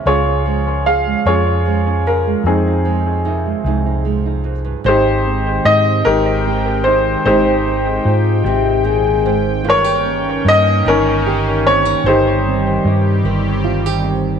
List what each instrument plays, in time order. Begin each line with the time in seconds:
0.06 fingered electric bass C#2, nylon-string guitar C#3 G#3 C#4 G#4, upright piano F4 G#4 C#5
0.25 nylon-string guitar C#4
0.46 nylon-string guitar F3 G#3
0.67 nylon-string guitar C#4
0.86 nylon-string guitar C#3 G#4, upright piano F5
1.07 nylon-string guitar G#3
1.25 fingered electric bass F2, nylon-string guitar C#3 G#3 C#4 G#4, upright piano F4 G#4 C#5
1.47 nylon-string guitar C#4
1.65 nylon-string guitar F3 G#3
1.87 nylon-string guitar C#4
2.07 nylon-string guitar C#3 G#4, upright piano A#4
2.27 nylon-string guitar G#3
2.44 fingered electric bass F2, nylon-string guitar F2 G#3 D#4, upright piano C4 D#4 G#4
2.67 nylon-string guitar D#4
2.85 nylon-string guitar F3 G#3
3.06 nylon-string guitar D#4
3.25 nylon-string guitar C3 D#4
3.46 nylon-string guitar G#3
3.64 fingered electric bass C2, nylon-string guitar F2 G#3 D#4
3.86 nylon-string guitar D#4
4.05 nylon-string guitar F3 G#3
4.26 nylon-string guitar D#4
4.44 nylon-string guitar F2
4.65 nylon-string guitar G2
4.84 fingered electric bass G#1, nylon-string guitar G#2 G4, analog synth pad D#3 G#3 C4 G5, upright piano G4 C5
4.88 upright piano D#4
5.26 nylon-string guitar C4
5.65 fingered electric bass G#2, nylon-string guitar D#4, upright piano D#5
6.05 fingered electric bass G#1, nylon-string guitar D#3, upright piano D#4 G4 A#4
6.47 nylon-string guitar G4
6.84 nylon-string guitar D#4, upright piano C5
7.25 fingered electric bass G#1, nylon-string guitar G#2, upright piano D#4 G4 C5
7.67 nylon-string guitar C4
8.05 fingered electric bass G#2, nylon-string guitar D#4, french horn F4
8.44 fingered electric bass G#1, nylon-string guitar C3, french horn G4
8.84 nylon-string guitar A#2, french horn G#4
9.26 nylon-string guitar G#2
9.64 fingered electric bass G1, nylon-string guitar G2 F4, analog synth pad C#4
9.68 analog synth pad A#3, upright piano A#4 C#5
9.84 nylon-string guitar G4
10.04 nylon-string guitar C#4
10.45 fingered electric bass G2, nylon-string guitar D#4, upright piano D#5
10.85 fingered electric bass G1, nylon-string guitar D#3, upright piano C#4 A#4
10.89 upright piano D#4
11.26 nylon-string guitar G4
11.66 nylon-string guitar C4, upright piano C#5
11.85 nylon-string guitar D#4
12.04 fingered electric bass G1, nylon-string guitar G2 G4, analog synth pad G3 C4 G4, upright piano D#4 C5
12.09 upright piano G4
12.48 nylon-string guitar C4
12.85 fingered electric bass G2, nylon-string guitar D#4
13.23 fingered electric bass G1, nylon-string guitar D#3
13.64 nylon-string guitar F4
13.86 nylon-string guitar G4
14.05 nylon-string guitar D#4